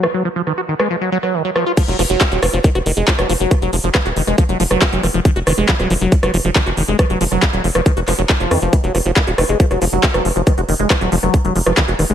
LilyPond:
<<
  \new Staff \with { instrumentName = "Acid bass" } { \clef bass \time 4/4 \key f \phrygian \tempo 4 = 138 ees16 ges16 f16 f16 ees16 ges'16 ees16 aes16 f16 ges16 ges16 ges16 ees16 ges16 f16 f'16 | f16 ges16 f16 ges16 ees16 ges16 f16 f16 ees16 ges'16 ees16 aes16 f16 ges16 f16 ges16 | ees16 ges16 f16 f16 ees16 ges'16 ees16 aes16 f16 ges16 f16 ges16 ees16 ges16 f16 f16 | ees16 ges'16 ees16 aes16 f16 ges16 f16 ges16 ees16 ges16 f16 f16 ees16 ges'16 ees16 aes16 |
f16 ges16 f16 ges16 ees16 ges16 f16 f16 ees16 ges'16 f16 ges16 ees16 f16 ees16 f16 | ees16 ges16 f16 f16 ees16 ges'16 ees16 aes16 f16 ges16 f16 ges16 ees16 ges16 f16 f16 | ees16 ges'16 ees16 aes16 f16 ges16 f16 ges16 ees16 ges16 f16 f16 ees16 ges'16 ees16 aes16 | }
  \new Staff \with { instrumentName = "Analog synth bass" } { \clef bass \time 4/4 \key f \phrygian r1 | r16 f,,16 f,,16 f,,16 r16 ees,,16 f,,16 f,,16 r16 f,,16 f,,16 f,,16 r16 f,,16 f,,16 f,,16 | r16 f,,16 f,,16 f,,16 r16 ees,,16 f,,16 f,,16 r16 f,,16 f,,16 f,,16 r16 f,,16 f,,16 f,,16 | r16 f,,16 f,,16 f,,16 r16 ees,,16 f,,16 f,,16 r16 f,,16 f,,16 f,,16 r16 f,,16 f,,16 f,,16 |
r16 f,,16 f,,16 f,,16 r16 ees,,16 f,,16 f,,16 r16 f,,16 f,,16 f,,16 r16 f,,16 f,16 f,,16 | r16 f,,16 f,,16 f,,16 r16 ees,,16 f,,16 f,,16 r16 f,,16 f,,16 f,,16 r16 f,,16 f,,16 f,,16 | r16 f,,16 f,,16 f,,16 r16 ees,,16 f,,16 f,,16 r16 f,,16 f,,16 f,,16 r16 f,,16 f,,16 f,,16 | }
  \new DrumStaff \with { instrumentName = "Drums" } \drummode { \time 4/4 ss4 ss8. ss16 r8. ss16 r8 ss8 | <cymc hh bd>16 hh16 <hho ss>16 hh16 <hc hh bd>16 hh16 <hho ss>8 <hh bd>16 <hh ss>16 hho16 hh16 <hc hh bd>16 <hh ss>16 hho16 hh16 | <hh bd ss>16 hh16 hho16 hh16 <hc hh bd ss>16 hh16 hho16 <hh ss>16 <hh bd>16 hh16 hho16 <hh ss>16 <hc hh bd>16 hh16 <hho ss>16 hh16 | <hh bd>16 hh16 <hho ss>8 <hc hh bd>16 <hh ss>16 hho16 hh16 <hh bd>16 <hh ss>16 hho16 hh16 <hc hh bd ss>16 hh16 hho16 hh16 |
<hh bd ss>16 hh16 hho16 <hh ss>16 <hc hh bd>16 hh16 hho16 <hh ss>16 <hh bd>16 hh16 <hc hho ss>16 hh16 <hc hh bd>16 hh16 <hho ss>16 hh16 | <hh bd>16 hh16 <hho ss>16 hh16 <hc hh bd>16 hh16 <hho ss>16 hh16 <hh bd>16 <hh ss>16 hho8 <hc hh bd>16 <hh ss>16 hho16 hh16 | <hh bd ss>16 hh16 hho16 hh16 <hc hh bd ss>16 hh16 hho16 <hh ss>16 <hh bd>16 hh16 hho16 ss16 <hc hh bd>16 hh16 <hho ss>16 hh16 | }
>>